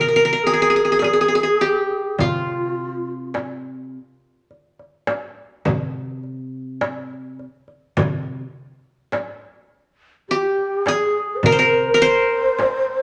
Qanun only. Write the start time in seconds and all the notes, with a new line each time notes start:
Already playing: G#4
0.01 A#4
0.08 A#4
0.16 A#4
0.25 A#4
0.33 A#4
0.47 G#4
0.54 G#4
0.62 G#4
0.70 G#4
0.76 G#4
0.85 G#4
0.92 G#4
0.99 G#4
1.04 G#4
1.13 G#4
1.21 G#4
1.28 G#4
1.35 G#4
1.43 G#4
1.61 G4
2.20 F4
10.31 G4
10.88 G#4
11.46 A#4
11.52 C5
11.59 A#4
11.94 A#4
12.02 C5